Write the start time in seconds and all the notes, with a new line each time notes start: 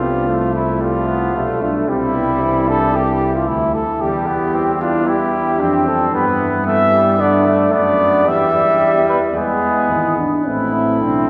Already playing: C2 F3 F4
0.01 G3 B3
0.28 A3
0.56 E4
0.81 F3 G3 F4
1.08 B3
1.33 B1 G3 A3
1.62 D4 F4
1.88 C2 G3 C4 E4
2.15 B3
2.41 E3 C4
2.68 D4 A4
2.94 E3 E4 G4
3.35 F4
3.46 D2 E4
3.75 A4
4.00 E2 G3 G4
4.27 B3
4.53 C4 E4
4.81 D4 F4
5.07 G3 E4 G4
5.59 F2 C4 D4
5.86 C4 A4
6.13 G2 G3 B3 B4
6.40 E3
6.66 A3 B3 E5
6.93 G3
7.19 D3 B3 D4 D5
7.46 A3
7.72 F#2 B3 D4 D5
8.26 E2 G3 B3 E5
8.54 G3
9.09 B4
9.36 E2 G#3 B3 G#4
9.90 G#1 E4
10.18 D4
10.45 A1 A3 C4 E4
10.74 C4
11.00 B1 C4 D4